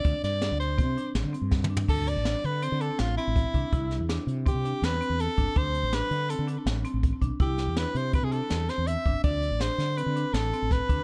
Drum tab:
CC |------------------------------|x-----------------------------|------------------------------|------------------------------|
HH |x--x--x--x--x--x--x--x--------|---x--x--x--x--x--x--x--x--x--|x--x--x--x--x--x--x--x--x--x--|x--x--x--x--x--x--x--x--x--x--|
SD |---o--o-----------o-----o-----|------o-----------o-----------|---o--o-----------o-----------|------o-----------o-----------|
T2 |--------------------------o---|------------------------------|------------------------------|------------------------------|
FT |----------------------------o-|------------------------------|------------------------------|------------------------------|
BD |o-----------o-----------o-----|o-----------------------o--o--|o-----------o--------------o--|o-----------------------o--o--|

CC |------------------------------|------------------------------|
HH |x--x--x--x--x--x--x--x--x--x--|x--x--x--x--x--x--x--x--x--x--|
SD |---o--o-----------o--o--------|------o--o--------o-----o-----|
T2 |------------------------------|------------------------------|
FT |------------------------------|------------------------------|
BD |o-----------o--------------o--|o-----------------------o--o--|